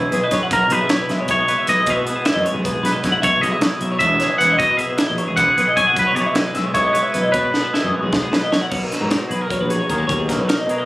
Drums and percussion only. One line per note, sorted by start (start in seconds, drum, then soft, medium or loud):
0.12 closed hi-hat medium
0.31 kick medium
0.31 snare soft
0.31 closed hi-hat medium
0.51 kick loud
0.51 closed hi-hat medium
0.70 closed hi-hat medium
0.89 snare loud
0.89 closed hi-hat medium
1.09 snare soft
1.09 closed hi-hat medium
1.28 kick loud
1.28 closed hi-hat medium
1.48 closed hi-hat medium
1.67 closed hi-hat medium
1.86 kick loud
1.86 closed hi-hat loud
2.07 closed hi-hat medium
2.25 snare loud
2.25 closed hi-hat medium
2.46 closed hi-hat medium
2.65 kick loud
2.65 closed hi-hat medium
2.85 snare soft
2.85 closed hi-hat medium
3.04 kick medium
3.04 snare soft
3.04 closed hi-hat medium
3.23 kick loud
3.23 closed hi-hat medium
3.43 closed hi-hat medium
3.61 snare medium
3.61 closed hi-hat medium
3.81 closed hi-hat medium
4.00 kick loud
4.00 closed hi-hat medium
4.20 snare soft
4.20 closed hi-hat medium
4.41 closed hi-hat medium
4.60 kick loud
4.60 closed hi-hat medium
4.79 closed hi-hat medium
4.98 snare loud
4.98 closed hi-hat medium
5.18 closed hi-hat medium
5.37 kick loud
5.37 closed hi-hat loud
5.58 closed hi-hat medium
5.77 kick medium
5.77 closed hi-hat medium
5.96 kick loud
5.96 closed hi-hat medium
6.16 closed hi-hat medium
6.35 snare medium
6.35 closed hi-hat medium
6.55 snare soft
6.55 closed hi-hat medium
6.75 kick loud
6.75 closed hi-hat medium
6.95 closed hi-hat medium
7.14 closed hi-hat medium
7.34 kick loud
7.34 closed hi-hat medium
7.54 snare medium
7.74 snare medium
8.13 kick loud
8.13 snare medium
8.33 snare medium
8.52 snare medium
8.71 kick loud
8.71 crash loud
8.92 snare soft
8.92 closed hi-hat medium
9.11 snare medium
9.11 closed hi-hat medium
9.31 closed hi-hat medium
9.50 kick medium
9.50 closed hi-hat medium
9.70 closed hi-hat medium
9.90 kick medium
9.90 closed hi-hat medium
10.09 kick loud
10.09 closed hi-hat medium
10.29 kick medium
10.29 snare soft
10.29 closed hi-hat medium
10.49 snare medium
10.49 closed hi-hat medium
10.69 closed hi-hat medium